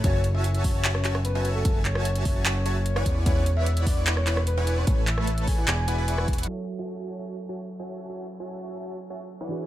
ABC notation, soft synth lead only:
X:1
M:4/4
L:1/16
Q:1/4=149
K:F#m
V:1 name="Soft synth lead"
c2 z e2 z c2 z c2 z B2 z A- | A z c3 z c8- c z | c2 z e2 z d2 z c2 z B3 c- | c z e3 z g8- g z |
z16 | z16 |]